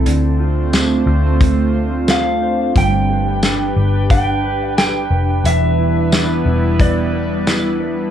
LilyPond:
<<
  \new Staff \with { instrumentName = "Electric slide guitar" } { \time 4/4 \key d \dorian \tempo 4 = 89 r2. f''4 | g''2 g''4 g''4 | e''2 d''4. r8 | }
  \new Staff \with { instrumentName = "Clean electric guitar" } { \time 4/4 \key d \dorian d8 f'8 c'8 f'8 a8 c''8 f'8 c''8 | g8 g'8 d'8 g'8 d'8 b'8 g'8 b'8 | e8 e'8 d'8 e'8 g8 b'8 e'8 b'8 | }
  \new Staff \with { instrumentName = "Ambient pad" } { \time 4/4 \key d \dorian << { <a c' f' c''>1 | <g' b'>1 | <g b e' b'>1 | } \\ { d'1~ | d'1~ | d'1 | } >> }
  \new Staff \with { instrumentName = "Picked electric bass" } { \clef bass \time 4/4 \key d \dorian d,4. d,2~ d,8 | g,,4. g,,2 f,,8 | e,,4. e,,2~ e,,8 | }
  \new DrumStaff \with { instrumentName = "Drums" } \drummode { \time 4/4 hh4 <hh sn tamb>4 <hh bd>4 <hh sn tamb>4 | <hh bd>4 <hh sn tamb>4 <hh bd>4 <hh sn tamb>4 | hh4 <hh sn tamb>4 <hh bd>4 <hh sn tamb>4 | }
>>